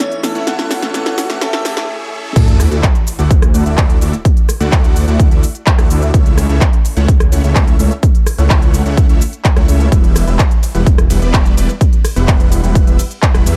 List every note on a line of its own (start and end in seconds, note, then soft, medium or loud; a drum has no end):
0.00 0.20 E3 medium
0.00 0.20 A3 medium
0.00 0.21 C#4 medium
0.00 0.21 A4 medium
0.00 0.24 C#5 loud
0.00 riser medium
0.00 shaker soft
0.12 closed hi-hat soft
0.12 shaker soft
0.23 0.39 E3 medium
0.23 0.39 A3 medium
0.23 0.39 C#4 medium
0.23 0.39 A4 loud
0.23 0.46 E5 loud
0.23 snare medium
0.23 open hi-hat loud
0.23 shaker medium
0.35 0.45 A3 medium
0.35 0.45 C#4 medium
0.35 0.45 E4 medium
0.35 0.45 C#5 medium
0.35 0.45 F#5 medium
0.35 closed hi-hat soft
0.35 shaker soft
0.46 0.79 E3 medium
0.46 0.79 A3 medium
0.46 0.80 A3 medium
0.46 0.80 C#4 medium
0.46 0.80 E4 medium
0.46 0.80 A4 loud
0.46 0.80 C#5 medium
0.46 0.80 E5 medium
0.46 0.91 F#5 loud
0.46 snare medium
0.46 closed hi-hat medium
0.46 shaker soft
0.59 snare medium
0.59 closed hi-hat soft
0.59 shaker soft
0.71 snare medium
0.71 open hi-hat loud
0.71 shaker medium
0.82 0.92 E3 medium
0.82 0.92 A3 medium
0.82 0.92 C#4 medium
0.82 0.92 E4 medium
0.82 0.93 A4 loud
0.82 0.92 C#5 medium
0.82 0.92 E5 loud
0.82 snare medium
0.82 closed hi-hat soft
0.82 shaker soft
0.94 1.27 E3 loud
0.94 1.27 A3 medium
0.94 1.27 C#4 medium
0.94 1.27 E4 medium
0.94 1.27 A4 loud
0.94 1.27 C#5 medium
0.94 1.27 E5 medium
0.94 1.43 F#5 medium
0.94 snare loud
0.94 closed hi-hat medium
0.94 shaker soft
1.06 snare medium
1.06 closed hi-hat soft
1.06 shaker soft
1.18 snare loud
1.18 open hi-hat loud
1.18 shaker medium
1.29 1.39 E3 medium
1.29 1.39 A3 medium
1.29 1.40 A3 medium
1.29 1.40 C#4 medium
1.29 1.40 E4 medium
1.29 1.40 A4 loud
1.29 1.40 C#5 medium
1.29 1.40 E5 loud
1.29 snare medium
1.29 closed hi-hat soft
1.29 shaker soft
1.41 1.63 E3 loud
1.41 1.63 A3 medium
1.41 1.63 C#4 medium
1.41 1.63 E4 medium
1.41 1.64 A4 loud
1.41 1.63 C#5 medium
1.41 1.89 E5 loud
1.41 1.63 E5 medium
1.41 snare loud
1.41 closed hi-hat medium
1.41 shaker soft
1.53 snare medium
1.53 closed hi-hat soft
1.53 shaker soft
1.64 1.87 E3 loud
1.64 1.87 A3 medium
1.64 1.87 C#4 medium
1.64 1.87 E4 medium
1.64 1.87 A4 loud
1.64 1.87 C#5 medium
1.64 1.87 E5 medium
1.64 snare loud
1.64 open hi-hat loud
1.64 shaker medium
1.77 snare medium
1.77 closed hi-hat soft
1.77 shaker soft
1.89 2.11 A3 medium
1.89 2.11 C#4 medium
1.89 2.11 E4 medium
1.89 2.11 C#5 medium
1.89 2.11 E5 medium
2.12 2.34 A3 medium
2.12 2.34 C#4 medium
2.12 2.34 E4 medium
2.12 2.34 C#5 medium
2.12 2.34 E5 medium
2.36 2.69 D2 loud
2.36 2.69 A3 medium
2.36 2.69 D5 medium
2.36 kick loud
2.36 closed hi-hat loud
2.36 crash loud
2.36 sub drop medium
2.36 shaker soft
2.48 closed hi-hat soft
2.48 shaker soft
2.60 cross-stick medium
2.60 open hi-hat loud
2.60 shaker medium
2.71 2.82 D2 loud
2.71 2.85 A3 medium
2.71 2.85 E4 medium
2.71 2.85 F#4 medium
2.71 2.85 D5 medium
2.71 2.85 E5 loud
2.71 closed hi-hat soft
2.71 shaker soft
2.83 kick loud
2.83 clap loud
2.83 closed hi-hat loud
2.83 shaker soft
2.95 closed hi-hat soft
2.95 shaker soft
3.07 open hi-hat loud
3.07 shaker medium
3.19 3.52 D2 loud
3.19 3.32 A3 medium
3.19 3.32 E4 medium
3.19 3.32 F#4 medium
3.19 3.32 D5 medium
3.19 3.32 F#5 medium
3.19 closed hi-hat soft
3.19 shaker soft
3.31 kick loud
3.31 closed hi-hat loud
3.31 shaker soft
3.42 cross-stick medium
3.42 closed hi-hat soft
3.42 shaker soft
3.54 3.64 D2 loud
3.54 3.64 A3 medium
3.54 3.64 E4 medium
3.54 3.64 F#4 medium
3.54 3.64 D5 medium
3.54 3.64 F#5 medium
3.54 open hi-hat loud
3.54 shaker medium
3.66 3.99 D2 loud
3.66 3.99 A3 medium
3.66 3.99 E4 medium
3.66 3.99 F#4 medium
3.66 3.99 D5 medium
3.66 3.99 E5 medium
3.66 closed hi-hat soft
3.66 shaker soft
3.78 kick loud
3.78 clap loud
3.78 closed hi-hat loud
3.78 shaker soft
3.90 closed hi-hat soft
3.90 shaker soft
4.01 4.12 D2 medium
4.01 4.15 A3 loud
4.01 4.15 E4 medium
4.01 4.15 F#4 medium
4.01 4.15 D5 medium
4.01 4.15 E5 loud
4.01 open hi-hat loud
4.01 shaker medium
4.13 closed hi-hat soft
4.13 shaker soft
4.25 kick loud
4.25 closed hi-hat medium
4.25 shaker soft
4.37 closed hi-hat soft
4.37 shaker soft
4.49 cross-stick medium
4.49 open hi-hat loud
4.49 shaker medium
4.60 5.05 D2 loud
4.60 5.05 A3 medium
4.60 5.05 E4 medium
4.60 5.05 F#4 medium
4.60 5.05 D5 medium
4.60 5.05 F#5 medium
4.60 closed hi-hat soft
4.60 shaker soft
4.72 kick loud
4.72 clap loud
4.72 closed hi-hat loud
4.72 shaker soft
4.84 closed hi-hat soft
4.84 shaker soft
4.96 open hi-hat loud
4.96 shaker medium
5.08 5.29 D2 loud
5.08 5.29 A3 medium
5.08 5.29 E4 medium
5.08 5.29 F#4 medium
5.08 5.29 D5 medium
5.08 5.29 F#5 medium
5.08 closed hi-hat soft
5.08 shaker soft
5.20 kick loud
5.20 closed hi-hat loud
5.20 shaker soft
5.31 5.42 D2 loud
5.31 5.45 A3 medium
5.31 5.45 E4 medium
5.31 5.45 F#4 medium
5.31 5.45 D5 medium
5.31 5.45 E5 medium
5.31 closed hi-hat soft
5.31 shaker soft
5.43 open hi-hat loud
5.43 shaker medium
5.55 closed hi-hat soft
5.55 shaker soft
5.67 kick loud
5.67 clap loud
5.67 closed hi-hat medium
5.67 shaker soft
5.79 5.88 D2 loud
5.79 5.89 A3 medium
5.79 5.89 E4 medium
5.79 5.89 F#4 medium
5.79 5.89 D5 medium
5.79 5.89 F#5 loud
5.79 cross-stick medium
5.79 closed hi-hat soft
5.79 shaker soft
5.90 6.12 D2 loud
5.90 6.11 A3 medium
5.90 6.11 E4 medium
5.90 6.11 F#4 medium
5.90 6.11 D5 medium
5.90 6.11 E5 medium
5.90 open hi-hat loud
5.90 shaker medium
6.02 closed hi-hat soft
6.02 shaker soft
6.14 6.47 C#2 loud
6.14 6.47 A3 medium
6.14 6.47 C#4 medium
6.14 6.47 C#5 medium
6.14 kick loud
6.14 closed hi-hat medium
6.14 shaker soft
6.26 closed hi-hat soft
6.26 shaker soft
6.38 cross-stick medium
6.38 open hi-hat loud
6.38 shaker medium
6.49 6.60 C#2 medium
6.49 6.63 A3 loud
6.49 6.63 C#4 medium
6.49 6.63 E4 medium
6.49 6.63 C#5 medium
6.49 6.63 E5 loud
6.49 closed hi-hat soft
6.49 shaker soft
6.61 kick loud
6.61 clap loud
6.61 closed hi-hat medium
6.61 shaker soft
6.73 closed hi-hat soft
6.73 shaker soft
6.85 open hi-hat loud
6.85 shaker medium
6.97 7.30 C#2 loud
6.97 7.10 A3 medium
6.97 7.10 C#4 medium
6.97 7.10 E4 medium
6.97 7.10 C#5 medium
6.97 7.10 F#5 medium
6.97 closed hi-hat soft
6.97 shaker soft
7.08 kick loud
7.08 closed hi-hat medium
7.08 shaker soft
7.20 cross-stick medium
7.20 closed hi-hat soft
7.20 shaker soft
7.32 7.42 C#2 loud
7.32 7.42 A3 medium
7.32 7.42 C#4 medium
7.32 7.42 E4 medium
7.32 7.42 C#5 medium
7.32 7.42 F#5 medium
7.32 open hi-hat loud
7.32 shaker medium
7.44 7.77 C#2 loud
7.44 7.77 A3 medium
7.44 7.77 C#4 medium
7.44 7.77 E4 medium
7.44 7.77 C#5 medium
7.44 7.77 E5 medium
7.44 closed hi-hat soft
7.44 shaker soft
7.55 kick loud
7.55 clap loud
7.55 closed hi-hat loud
7.55 shaker soft
7.68 closed hi-hat soft
7.68 shaker soft
7.79 7.90 C#2 loud
7.79 7.92 A3 loud
7.79 7.92 C#4 medium
7.79 7.92 E4 medium
7.79 7.92 C#5 medium
7.79 7.93 E5 loud
7.79 open hi-hat loud
7.79 shaker medium
7.91 closed hi-hat soft
7.91 shaker soft
8.03 kick loud
8.03 closed hi-hat medium
8.03 shaker soft
8.15 closed hi-hat soft
8.15 shaker soft
8.27 cross-stick medium
8.27 open hi-hat loud
8.27 shaker medium
8.38 8.83 C#2 medium
8.38 8.83 A3 medium
8.38 8.83 C#4 medium
8.38 8.83 E4 medium
8.38 8.83 C#5 medium
8.38 8.83 F#5 medium
8.38 closed hi-hat soft
8.38 shaker soft
8.50 kick loud
8.50 clap loud
8.50 closed hi-hat medium
8.50 shaker soft
8.62 closed hi-hat soft
8.62 shaker soft
8.74 open hi-hat loud
8.74 shaker medium
8.86 9.07 C#2 loud
8.86 9.06 A3 medium
8.86 9.07 C#4 medium
8.86 9.07 E4 medium
8.86 9.06 C#5 medium
8.86 9.06 F#5 medium
8.86 closed hi-hat soft
8.86 shaker soft
8.97 kick loud
8.97 closed hi-hat medium
8.97 shaker soft
9.09 9.20 C#2 loud
9.09 9.22 A3 medium
9.09 9.22 C#4 medium
9.09 9.22 E4 medium
9.09 9.22 C#5 medium
9.09 9.22 E5 medium
9.09 closed hi-hat soft
9.09 shaker soft
9.21 open hi-hat loud
9.21 shaker medium
9.33 closed hi-hat soft
9.33 shaker soft
9.45 kick loud
9.45 clap loud
9.45 closed hi-hat medium
9.45 shaker soft
9.57 9.66 C#2 loud
9.57 9.67 A3 medium
9.57 9.67 C#4 medium
9.57 9.67 E4 medium
9.57 9.67 C#5 medium
9.57 9.67 F#5 medium
9.57 cross-stick medium
9.57 closed hi-hat soft
9.57 shaker soft
9.68 9.90 C#2 medium
9.68 9.89 A3 medium
9.68 9.89 C#4 medium
9.68 9.89 E4 medium
9.68 9.89 C#5 medium
9.68 9.89 E5 medium
9.68 open hi-hat loud
9.68 shaker medium
9.80 closed hi-hat soft
9.80 shaker soft
9.92 10.25 E1 loud
9.92 10.25 G3 medium
9.92 10.25 B3 medium
9.92 10.25 E4 medium
9.92 10.25 B4 medium
9.92 kick loud
9.92 closed hi-hat medium
9.92 shaker soft
10.04 closed hi-hat soft
10.04 shaker soft
10.16 cross-stick medium
10.16 open hi-hat loud
10.16 ride medium
10.16 shaker medium
10.27 10.38 E1 loud
10.27 10.41 G3 loud
10.27 10.41 B3 medium
10.27 10.41 E4 medium
10.27 10.41 B4 medium
10.27 10.41 E5 loud
10.27 closed hi-hat soft
10.27 shaker soft
10.39 kick loud
10.39 clap loud
10.39 closed hi-hat medium
10.39 shaker soft
10.51 closed hi-hat soft
10.51 shaker soft
10.63 open hi-hat loud
10.63 ride medium
10.63 shaker medium
10.75 11.08 E1 loud
10.75 10.88 G3 medium
10.75 10.88 B3 medium
10.75 10.88 E4 medium
10.75 10.88 B4 medium
10.75 10.88 F#5 loud
10.75 closed hi-hat soft
10.75 shaker soft
10.86 kick loud
10.86 closed hi-hat medium
10.86 shaker soft
10.98 cross-stick medium
10.98 closed hi-hat soft
10.98 shaker soft
11.10 11.20 E1 loud
11.10 11.20 G3 medium
11.10 11.20 B3 medium
11.10 11.20 E4 medium
11.10 11.20 B4 medium
11.10 11.20 F#5 medium
11.10 open hi-hat loud
11.10 ride medium
11.10 shaker medium
11.22 11.55 E1 loud
11.22 11.54 G3 medium
11.22 11.54 B3 medium
11.22 11.54 E4 medium
11.22 11.54 B4 medium
11.22 11.54 D5 medium
11.22 closed hi-hat soft
11.22 shaker soft
11.34 kick loud
11.34 clap loud
11.34 closed hi-hat loud
11.34 shaker soft
11.46 closed hi-hat soft
11.46 shaker soft
11.57 11.68 E1 medium
11.57 11.70 G3 loud
11.57 11.70 B3 medium
11.57 11.70 E4 medium
11.57 11.70 B4 medium
11.57 11.70 D5 loud
11.57 open hi-hat loud
11.57 ride medium
11.57 shaker medium
11.69 closed hi-hat soft
11.69 shaker soft
11.81 kick loud
11.81 closed hi-hat medium
11.81 shaker soft
11.93 closed hi-hat soft
11.93 shaker soft
12.05 cross-stick medium
12.05 open hi-hat loud
12.05 ride medium
12.05 shaker medium
12.16 12.61 E1 loud
12.16 12.61 G3 medium
12.16 12.61 B3 medium
12.16 12.61 E4 medium
12.16 12.61 B4 medium
12.16 12.61 F#5 medium
12.16 closed hi-hat soft
12.16 shaker soft
12.28 kick loud
12.28 clap loud
12.28 closed hi-hat medium
12.28 shaker soft
12.40 closed hi-hat soft
12.40 shaker soft
12.52 open hi-hat loud
12.52 ride medium
12.52 shaker medium
12.64 12.85 E1 loud
12.64 12.84 G3 medium
12.64 12.84 B3 medium
12.64 12.84 E4 medium
12.64 12.84 B4 medium
12.64 12.84 F#5 medium
12.64 closed hi-hat soft
12.64 shaker soft
12.75 kick loud
12.75 closed hi-hat medium
12.75 shaker soft
12.87 12.98 E1 loud
12.87 13.00 G3 medium
12.87 13.00 B3 medium
12.87 13.00 E4 medium
12.87 13.00 B4 medium
12.87 13.00 E5 medium
12.87 closed hi-hat soft
12.87 shaker soft
12.99 open hi-hat medium
12.99 ride medium
12.99 shaker medium
13.11 closed hi-hat soft
13.11 shaker soft
13.22 kick loud
13.22 clap loud
13.22 closed hi-hat loud
13.22 shaker soft
13.34 13.44 E1 loud
13.34 13.45 G3 medium
13.34 13.45 B3 medium
13.34 13.45 E4 medium
13.34 13.45 B4 medium
13.34 13.45 F#5 loud
13.34 cross-stick medium
13.34 closed hi-hat soft
13.34 shaker soft
13.46 13.56 E2 medium
13.46 13.56 G3 medium
13.46 13.56 B3 medium
13.46 13.56 E4 medium
13.46 13.56 B4 medium
13.46 13.56 E5 loud
13.46 open hi-hat loud
13.46 ride medium
13.46 shaker medium